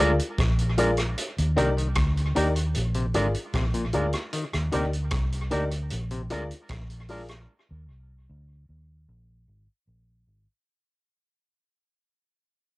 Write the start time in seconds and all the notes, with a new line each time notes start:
0.00 D2 D3 G#3 D4 F4 G#4 A#4 D5
0.19 closed hi-hat
0.38 A#1, kick, cross-stick, closed hi-hat
0.59 closed hi-hat
0.78 G#3 D4 F4 G#4 A#4 D5, closed hi-hat
0.97 cross-stick, closed hi-hat
1.18 closed hi-hat
1.38 D#2, closed hi-hat
1.56 C2 D#3 A#3 D4 D#4 G4 A#4 D5, closed hi-hat
1.77 D#3, closed hi-hat
1.95 D2, kick, cross-stick, closed hi-hat
2.17 closed hi-hat
2.35 D#2 A#3 D4 D#4 G4 A#4 D5, closed hi-hat
2.56 closed hi-hat
2.74 A#1, closed hi-hat
2.94 C3, closed hi-hat
3.14 G#1 D3 G#3 D4 F4 G#4 A#4 D5, closed hi-hat
3.34 closed hi-hat
3.53 A#1 C3, kick, cross-stick, closed hi-hat
3.74 A#2, closed hi-hat
3.93 D2 G#2 G#3 D4 F4 G#4 A#4 D5, closed hi-hat
4.13 cross-stick, closed hi-hat
4.33 D#3, closed hi-hat
4.53 D#2, cross-stick, closed hi-hat
4.72 D2 C3 A#3 D4 D#4 G4 A#4 D5, closed hi-hat
4.93 closed hi-hat
5.11 C2, kick, cross-stick, closed hi-hat
5.32 closed hi-hat
5.51 D2 A#3 D4 D#4 G4 A#4 D5, closed hi-hat
5.71 closed hi-hat
5.90 A#1, closed hi-hat
6.11 C3, closed hi-hat
6.30 D2 D3 G#3 D4 F4 G#4 A#4 D5, closed hi-hat
6.51 closed hi-hat
6.69 A#1, kick, cross-stick, closed hi-hat
6.90 closed hi-hat
7.08 G#3 D4 F4 G#4 A#4 D5, open hi-hat
7.28 cross-stick, closed hi-hat
7.71 D#2
7.90 C2
8.29 D2
8.69 D#2
9.09 A#1
9.48 G#1
9.87 A#1
10.27 G#1